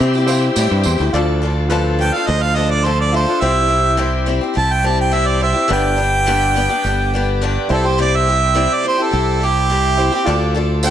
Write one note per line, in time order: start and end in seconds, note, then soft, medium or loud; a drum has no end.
0.00 0.48 C3 medium
0.00 0.14 G3 medium
0.00 1.12 G3 medium
0.00 0.54 C4 loud
0.00 1.12 C4 medium
0.00 0.15 C4 medium
0.00 1.11 E4 medium
0.00 0.15 E4 medium
0.00 1.12 G4 medium
0.00 0.14 G4 medium
0.14 0.29 G4 medium
0.14 tambourine soft
0.18 0.29 C4 soft
0.18 0.30 E4 medium
0.27 0.56 G3 medium
0.27 0.85 C4 loud
0.27 0.57 C4 medium
0.27 0.85 E4 medium
0.27 0.85 G4 medium
0.27 0.86 C5 medium
0.27 0.55 F5 medium
0.27 tambourine medium
0.31 0.57 E4 medium
0.31 0.58 G4 medium
0.42 tambourine soft
0.56 0.70 A2 medium
0.56 1.00 C3 medium
0.56 1.00 G3 medium
0.56 1.00 C4 medium
0.56 1.00 E4 medium
0.56 0.99 G4 loud
0.56 0.83 G5 medium
0.56 tambourine medium
0.70 0.84 G2 medium
0.70 tambourine soft
0.83 0.99 E2 medium
0.83 1.12 C6 medium
0.83 tambourine medium
0.98 1.13 D2 medium
0.98 1.15 E4 medium
0.98 1.14 G4 medium
0.98 tambourine soft
1.03 1.14 C4 soft
1.12 2.10 D2 medium
1.12 1.42 D3 medium
1.12 1.40 F3 medium
1.12 3.40 A3 medium
1.12 1.41 D4 loud
1.12 3.41 D4 medium
1.12 1.51 F4 medium
1.12 1.42 F4 medium
1.12 3.41 F4 medium
1.12 1.52 A4 medium
1.12 3.41 A4 medium
1.12 1.43 A4 medium
1.12 1.52 D5 loud
1.42 1.69 F3 medium
1.42 1.70 D4 medium
1.42 1.70 F4 medium
1.42 1.71 A4 medium
1.69 1.99 D3 medium
1.69 1.97 F3 medium
1.69 1.99 D4 medium
1.69 2.46 F4 medium
1.69 2.00 F4 loud
1.69 2.47 A4 medium
1.69 2.00 A4 medium
1.69 2.47 B4 loud
1.99 2.13 F3 medium
1.99 2.14 D4 medium
1.99 2.15 F4 medium
1.99 2.13 A4 medium
1.99 2.16 G5 medium
2.14 2.27 D4 soft
2.14 2.28 F4 soft
2.14 2.28 A4 soft
2.14 2.29 F5 medium
2.27 3.25 D2 medium
2.27 2.53 F3 medium
2.27 2.55 D4 medium
2.27 2.56 F4 medium
2.27 2.56 A4 medium
2.27 2.44 D#5 medium
2.42 2.57 F5 medium
2.55 2.83 F3 medium
2.55 2.85 D4 medium
2.55 2.85 F4 medium
2.55 2.85 A4 medium
2.55 2.72 D#5 medium
2.71 2.87 D5 medium
2.85 3.13 D3 medium
2.85 3.11 F3 medium
2.85 3.13 D4 medium
2.85 3.13 F4 medium
2.85 3.14 A4 medium
2.85 2.98 C5 medium
3.00 3.13 D5 medium
3.12 3.27 F3 soft
3.12 3.28 D4 medium
3.12 3.32 F4 medium
3.12 3.27 F4 medium
3.12 3.33 A4 medium
3.12 3.25 A4 medium
3.12 3.43 C5 medium
3.12 3.33 E5 medium
3.26 3.42 D4 soft
3.26 3.42 F4 soft
3.26 3.41 A4 soft
3.41 4.39 C2 medium
3.41 3.70 C3 medium
3.41 3.67 G3 medium
3.41 5.68 C4 medium
3.41 3.68 C4 medium
3.41 3.80 E4 medium
3.41 5.68 E4 medium
3.41 3.69 E4 medium
3.41 5.68 G4 medium
3.41 3.80 G4 medium
3.41 3.70 G4 medium
3.41 5.68 C5 medium
3.41 3.80 C5 medium
3.41 3.97 E5 loud
3.68 3.96 G3 medium
3.68 3.97 C4 medium
3.68 3.98 E4 medium
3.68 3.98 G4 medium
3.97 4.27 C3 medium
3.97 4.25 G3 medium
3.97 4.26 C4 medium
3.97 4.75 E4 medium
3.97 4.27 E4 medium
3.97 4.76 G4 medium
3.97 4.28 G4 medium
3.97 4.76 C5 medium
4.26 4.41 G3 medium
4.26 4.42 C4 medium
4.26 4.42 E4 medium
4.26 4.40 G4 medium
4.41 4.54 C4 soft
4.41 4.54 E4 soft
4.41 4.55 G4 soft
4.54 5.53 C2 medium
4.54 4.82 G3 medium
4.54 4.83 C4 medium
4.54 4.84 E4 medium
4.54 4.85 G4 medium
4.54 4.75 A5 medium
4.73 4.88 G5 medium
4.83 5.10 G3 medium
4.83 5.12 C4 medium
4.83 5.12 E4 medium
4.83 5.13 G4 medium
4.83 4.99 A5 medium
5.01 5.15 G5 medium
5.12 5.41 C3 medium
5.12 5.39 G3 medium
5.12 5.40 C4 medium
5.12 5.40 E4 medium
5.12 5.42 G4 medium
5.12 5.29 E5 medium
5.27 5.41 D5 medium
5.40 5.55 G3 medium
5.40 5.55 C4 medium
5.40 5.61 E4 medium
5.40 5.53 E4 medium
5.40 5.61 G4 medium
5.40 5.51 G4 medium
5.40 5.61 C5 medium
5.40 5.70 E5 medium
5.53 5.68 C4 soft
5.53 5.70 E4 soft
5.53 5.69 G4 soft
5.68 6.67 G1 medium
5.68 5.98 G2 medium
5.68 5.98 D3 medium
5.68 5.95 G3 medium
5.68 5.96 B3 medium
5.68 7.68 B3 medium
5.68 6.08 D4 medium
5.68 5.97 D4 medium
5.68 7.68 D4 medium
5.68 5.98 G4 medium
5.68 6.09 G4 medium
5.68 7.68 G4 medium
5.68 7.68 B4 medium
5.68 6.09 B4 medium
5.73 7.39 G5 loud
5.96 6.26 G3 medium
5.96 6.26 B3 medium
5.96 6.26 D4 medium
5.96 6.26 G4 medium
6.26 6.55 G2 medium
6.26 6.55 D3 medium
6.26 6.53 G3 medium
6.26 6.55 B3 medium
6.26 7.04 D4 medium
6.26 6.55 D4 medium
6.26 7.04 G4 medium
6.26 6.56 G4 loud
6.26 7.04 B4 medium
6.54 6.69 G3 medium
6.54 6.70 B3 medium
6.54 6.69 D4 medium
6.54 6.68 G4 medium
6.69 6.83 G3 soft
6.69 6.84 B3 medium
6.69 6.85 D4 medium
6.69 6.84 G4 medium
6.84 7.57 G1 medium
6.84 7.12 G3 medium
6.84 7.14 B3 medium
6.84 7.14 D4 medium
6.84 7.14 G4 medium
7.14 7.41 G3 medium
7.14 7.42 B3 medium
7.14 7.42 D4 medium
7.14 7.43 G4 medium
7.41 7.70 G2 medium
7.41 7.70 D3 medium
7.41 7.68 G3 medium
7.41 7.70 B3 medium
7.41 7.70 D4 medium
7.41 7.71 G4 medium
7.68 8.66 C2 medium
7.68 7.84 G3 medium
7.68 7.84 C4 medium
7.68 10.24 C4 medium
7.68 8.37 E4 medium
7.68 7.85 E4 medium
7.68 10.24 E4 medium
7.68 8.38 G4 medium
7.68 10.24 G4 medium
7.68 7.83 G4 medium
7.68 7.88 A4 medium
7.68 8.38 C5 medium
7.68 10.24 C5 medium
7.84 7.98 C4 soft
7.84 7.98 E4 soft
7.84 7.98 G4 medium
7.84 7.99 C5 medium
7.98 8.27 C3 medium
7.98 8.26 G3 medium
7.98 8.27 C4 medium
7.98 8.27 E4 medium
7.98 8.27 G4 medium
7.98 8.18 D5 medium
8.16 8.75 E5 loud
8.27 8.53 G3 medium
8.27 8.54 C4 medium
8.27 8.55 E4 medium
8.27 8.55 G4 medium
8.55 8.83 C3 medium
8.55 8.82 G3 medium
8.55 8.84 C4 medium
8.55 9.32 E4 medium
8.55 8.84 E4 medium
8.55 8.84 G4 medium
8.55 9.32 G4 medium
8.55 9.32 D5 medium
8.74 8.85 D5 medium
8.84 8.98 G3 medium
8.84 8.98 C4 medium
8.84 8.98 E4 medium
8.84 8.96 G4 medium
8.88 9.05 C5 medium
8.98 9.10 C4 soft
8.98 9.11 E4 soft
8.98 9.12 G4 soft
9.03 9.47 A4 loud
9.11 10.09 C2 medium
9.11 9.39 G3 medium
9.11 9.40 C4 medium
9.11 9.41 E4 medium
9.11 9.41 G4 medium
9.40 9.69 G3 medium
9.40 9.70 C4 medium
9.40 9.70 E4 medium
9.40 9.71 G4 medium
9.45 10.53 G4 loud
9.70 9.98 C3 medium
9.70 9.96 G3 medium
9.70 9.98 C4 medium
9.70 9.98 E4 medium
9.70 9.99 G4 medium
9.96 10.12 G3 medium
9.96 10.12 C4 medium
9.96 10.16 E4 medium
9.96 10.13 E4 medium
9.96 10.16 G4 medium
9.96 10.17 C5 medium
10.01 10.11 G4 medium
10.12 10.27 C4 soft
10.12 10.27 E4 medium
10.12 10.26 G4 medium
10.24 10.90 D2 medium
10.24 10.54 D3 medium
10.24 10.53 F3 medium
10.24 10.90 D4 medium
10.24 10.54 D4 loud
10.24 10.63 F4 medium
10.24 10.90 F4 medium
10.24 10.55 F4 loud
10.24 10.64 A4 medium
10.24 10.90 A4 medium
10.24 10.64 D5 loud
10.24 10.90 D5 medium
10.29 10.56 A4 medium
10.55 10.83 F3 medium
10.55 10.83 D4 medium
10.55 10.84 F4 medium
10.55 10.84 A4 medium
10.83 10.90 D3 medium
10.83 10.90 F3 medium
10.83 10.90 D4 medium
10.83 10.90 F4 medium
10.83 10.90 A4 medium
10.83 10.90 C5 medium
10.83 10.90 G5 loud
10.83 tambourine medium